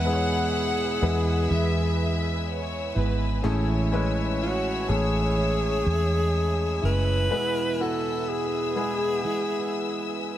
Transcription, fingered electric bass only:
0.00 0.98 E2 loud
1.02 1.47 E2 loud
1.51 2.92 E2 medium
2.96 3.41 G#1 medium
3.44 4.85 A1 loud
4.89 5.82 A1 medium
5.86 6.79 E2 medium
6.83 7.28 F#1 medium

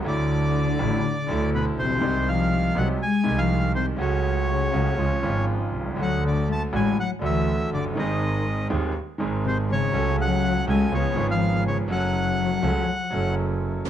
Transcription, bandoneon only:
0.07 1.50 D5 medium
1.55 1.66 B4 medium
1.79 2.29 C5 medium
2.29 2.78 F5 medium
2.78 2.88 F#5 medium
3.03 3.40 G#5 medium
3.38 3.72 F5 medium
3.75 3.86 C5 medium
4.01 5.45 C#5 medium
6.02 6.24 F#5 medium
6.27 6.49 D5 medium
6.52 6.63 A5 medium
6.75 6.98 G#5 medium
7.00 7.11 F#5 medium
7.25 7.70 E5 medium
7.74 7.85 D5 medium
7.99 8.68 D#5 medium
9.47 9.58 C5 medium
9.72 10.16 C#5 medium
10.21 10.65 F#5 medium
10.70 10.94 G#5 medium
10.94 11.27 C#5 medium
11.31 11.64 F5 medium
11.68 11.78 C#5 medium
11.92 13.35 F#5 medium

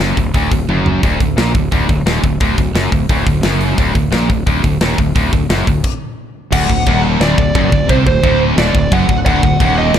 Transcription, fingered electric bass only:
0.00 0.16 F#1 medium
0.17 0.33 D1 medium
0.34 0.51 D1 medium
0.52 0.68 D1 medium
0.69 1.01 F#1 medium
1.03 1.19 D1 medium
1.20 1.36 D1 medium
1.37 1.54 A#1 medium
1.55 1.71 D1 medium
1.72 1.88 D1 loud
1.89 2.05 D1 medium
2.06 2.22 D#1 medium
2.23 2.40 D1 medium
2.41 2.57 D1 medium
2.58 2.74 D1 medium
2.75 2.91 F#1 medium
2.92 3.08 D1 medium
3.09 3.25 D1 medium
3.27 3.43 D1 medium
3.44 3.76 F#1 medium
3.78 3.94 D1 medium
3.95 4.11 D1 medium
4.13 4.28 A#1 loud
4.30 4.46 D1 medium
4.47 4.63 D1 loud
4.64 4.80 D1 medium
4.81 4.97 D#1 medium
4.99 5.14 D1 medium
5.16 5.31 D1 medium
5.33 5.49 D1 medium
5.50 5.66 F#1 medium
5.67 5.83 D1 medium
6.53 6.68 D1 medium
6.70 6.86 D1 medium
6.87 7.19 D#1 loud
7.21 7.37 D1 loud
7.38 7.54 D1 medium
7.55 7.71 F#1 loud
7.72 7.88 D1 medium
7.89 8.05 C2 medium
8.07 8.22 D1 medium
8.24 8.55 D1 loud
8.57 8.73 D#1 loud
8.75 8.91 D1 medium
8.92 9.08 F#1 loud
9.09 9.25 D1 medium
9.26 9.42 D1 medium
9.43 9.59 D1 medium
9.60 9.92 D#1 loud
9.94 9.99 D1 loud

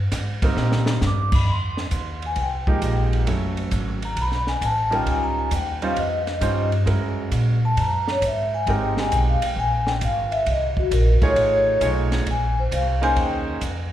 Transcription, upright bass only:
0.00 0.10 G2 medium
0.11 0.55 G#2 medium
0.56 1.00 A#2 medium
1.02 1.45 G2 medium
1.46 1.90 F2 medium
1.91 2.35 D#2 medium
2.36 2.80 C2 medium
2.81 3.25 A#1 medium
3.27 3.70 F#1 medium
3.72 4.15 G#1 medium
4.16 4.60 B1 medium
4.61 5.05 A1 medium
5.06 5.50 C#2 medium
5.51 5.95 D#2 medium
5.96 6.40 F2 medium
6.41 6.85 G2 medium
6.86 7.30 F#2 medium
7.31 7.75 A#2 medium
7.77 8.21 F#2 medium
8.21 8.65 G#2 medium
8.66 9.10 G#1 medium
9.12 9.40 B1 medium
9.42 muted upright bass stroke soft
9.56 10.00 A#1 medium
10.01 10.45 G#1 medium
10.46 10.90 C2 medium
10.91 11.20 A#1 loud
11.36 11.80 A1 medium
11.81 12.25 B1 loud
12.26 12.70 A#1 medium
12.71 13.15 C2 loud
13.16 13.60 D#2 medium
13.61 13.92 F2 medium

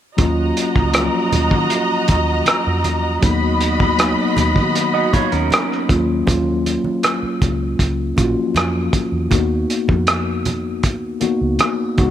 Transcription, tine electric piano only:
0.17 0.79 F#3 medium
0.17 0.80 A#3 medium
0.17 0.80 C#4 medium
0.17 0.81 F4 medium
0.93 1.00 F3 medium
0.93 2.17 A#3 medium
0.93 2.18 C#4 medium
0.93 2.18 F4 medium
0.99 2.20 F#3 medium
3.22 3.84 F#3 medium
3.22 3.84 A#3 medium
3.22 3.85 B3 medium
3.22 3.85 D#4 medium
3.98 5.22 F#3 medium
3.98 5.22 A#3 medium
3.98 5.23 B3 medium
3.98 5.23 D#4 medium
5.88 6.19 F#3 medium
5.88 6.20 A#3 medium
5.88 6.20 C#4 medium
5.88 6.20 F4 medium
6.26 7.50 F#3 medium
6.26 7.51 A#3 medium
6.26 7.51 C#4 medium
6.26 7.51 F4 medium
8.15 8.23 F3 medium
8.15 9.10 A#3 medium
8.15 9.10 C#4 medium
8.15 9.11 F4 medium
8.22 9.13 F#4 medium
9.30 10.55 A#3 medium
9.30 10.55 B3 medium
9.30 10.56 D#4 medium
9.30 10.56 F#4 medium
11.20 11.98 A#3 medium
11.20 11.97 B3 medium
11.20 11.97 D#4 medium
11.20 11.98 F#4 medium
11.97 12.11 G#3 medium
11.97 12.11 B3 medium
11.97 12.11 D#4 medium
11.97 12.11 F#4 medium

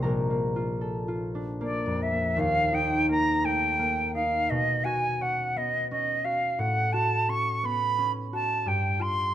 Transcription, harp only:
0.00 2.40 A#1 soft
0.00 1.41 F3 soft
0.00 0.29 A#3 soft
0.00 1.33 D4 soft
0.00 0.55 F4 soft
0.00 1.82 D5 medium
0.00 2.40 F5 medium
0.00 3.92 A#5 medium
0.00 1.81 D6 medium
0.00 2.39 F6 medium
0.04 3.94 A#4 medium
0.30 1.60 A#3 soft
0.56 1.07 F4 soft
0.81 2.39 A4 soft
1.08 2.39 F4 soft
1.35 2.40 D4 soft
1.61 2.11 A#3 soft
1.86 2.40 F2 soft
2.12 3.08 A#3 soft
2.37 4.52 D#2 medium
2.73 4.13 D#4 medium
3.09 3.78 A#3 medium
3.44 4.04 A3 soft
3.79 4.52 A#3 soft
4.15 6.62 D#4 soft
4.50 6.62 B2 medium
4.85 6.24 F#4 soft
5.21 5.90 C#4 soft
5.56 6.15 B3 soft
5.91 7.27 C#4 soft
6.25 6.92 F#4 soft
6.59 8.68 A2 medium
6.94 8.32 F#4 medium
7.28 7.97 C#4 soft
7.63 8.22 B3 soft
7.98 8.68 C#4 soft
8.33 8.69 F#4 soft
8.66 9.34 G2 soft
8.99 9.34 F4 medium

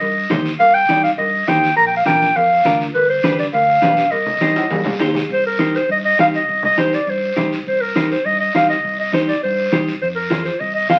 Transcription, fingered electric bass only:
0.02 0.25 G2 medium
0.31 0.55 D#2 medium
0.60 0.83 C2 medium
0.89 1.13 C2 medium
1.19 1.42 G2 medium
1.48 1.72 D#2 medium
1.78 2.01 A#1 loud
2.07 2.30 A#1 medium
2.36 2.60 F2 medium
2.66 2.89 D2 medium
2.96 3.19 G1 loud
3.25 3.48 G1 medium
3.53 3.77 D2 medium
3.84 4.07 B1 medium
4.12 4.36 C2 loud
4.42 4.66 C2 medium
4.71 4.95 G2 medium
5.00 5.24 D#2 medium
5.30 5.77 C2 loud
5.89 6.13 G2 medium
6.19 6.42 C2 medium
6.48 6.96 C2 loud
7.07 7.31 G2 medium
7.37 7.60 C2 medium
7.67 8.14 C2 medium
8.25 8.49 G2 medium
8.54 8.78 C2 medium
8.84 9.31 C2 loud
9.44 9.67 G2 loud
9.73 9.96 C2 medium
10.03 10.50 F2 loud
10.61 10.84 C2 medium
10.90 10.99 F2 medium

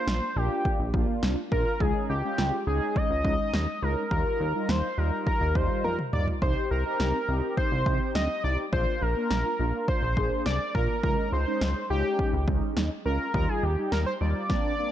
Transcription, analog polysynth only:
0.00 0.25 A#3 medium
0.00 0.25 D4 medium
0.00 0.25 F4 medium
0.36 0.79 A#3 medium
0.36 0.79 D4 medium
0.36 0.79 F4 medium
0.94 1.36 A#3 medium
0.94 1.36 D4 medium
0.94 1.36 F4 medium
1.52 1.73 A#3 medium
1.52 1.73 D4 medium
1.52 1.73 F4 medium
1.81 2.12 G#3 medium
1.81 2.12 C#4 medium
1.81 2.12 D#4 medium
2.24 2.56 G#3 medium
2.24 2.56 C#4 medium
2.24 2.56 F4 medium
2.67 3.10 G#3 medium
2.67 3.10 C#4 medium
2.67 3.10 D#4 medium
3.25 3.67 G#3 medium
3.25 3.67 C#4 medium
3.25 3.67 D#4 medium
3.82 4.04 G#3 medium
3.82 4.04 C#4 medium
3.82 4.04 D#4 medium
4.11 4.43 G3 medium
4.11 4.43 D#4 medium
4.11 4.43 F4 medium
4.54 4.86 G3 medium
4.54 4.86 D#4 medium
4.54 4.86 F4 medium
4.98 5.40 G3 medium
4.98 5.40 D#4 medium
4.98 5.40 F4 medium
5.55 5.98 G3 medium
5.55 5.98 D#4 medium
5.55 5.98 F4 medium
6.13 6.34 G3 medium
6.13 6.34 D#4 medium
6.13 6.34 F4 medium
6.42 6.74 C4 medium
6.42 6.74 D#4 medium
6.42 6.74 G4 medium
6.85 7.17 C4 medium
6.85 7.17 D#4 medium
6.85 7.17 G4 medium
7.28 7.71 C4 medium
7.28 7.71 D#4 medium
7.28 7.71 G4 medium
7.86 8.29 C4 medium
7.86 8.29 D#4 medium
7.86 8.29 G4 medium
8.44 8.65 C4 medium
8.44 8.65 D#4 medium
8.44 8.65 G4 medium
8.73 9.05 A#3 medium
8.73 9.05 D4 medium
8.73 9.05 F4 medium
9.16 9.48 A#3 medium
9.16 9.48 D4 medium
9.16 9.48 F4 medium
9.59 10.02 A#3 medium
9.59 10.02 D4 medium
9.59 10.02 F4 medium
10.17 10.60 A#3 medium
10.17 10.60 D4 medium
10.17 10.60 G#4 medium
10.75 10.96 A#3 medium
10.75 10.96 D4 medium
10.75 10.96 F4 medium
11.04 11.35 G#3 medium
11.04 11.35 C#4 medium
11.04 11.35 D#4 medium
11.47 11.79 G#3 medium
11.47 11.79 C#4 medium
11.47 11.79 D#4 medium
11.90 12.33 G#3 medium
11.90 12.33 C#4 medium
11.90 12.33 D#4 medium
12.48 12.90 G#3 medium
12.48 12.90 C#4 medium
12.48 12.90 D#4 medium
13.05 13.27 G#3 medium
13.05 13.27 C#4 medium
13.05 13.27 F4 medium
13.34 13.66 G3 medium
13.34 13.66 D#4 medium
13.34 13.66 F4 medium
13.78 14.09 G3 medium
13.78 14.09 D#4 medium
13.78 14.09 G4 medium
14.21 14.50 G3 medium
14.21 14.50 D#4 medium
14.21 14.50 F4 medium
14.50 14.73 A#3 medium
14.50 14.73 C4 medium
14.50 14.73 D4 medium
14.79 14.92 A#3 medium
14.79 14.92 C4 medium
14.79 14.92 D4 medium

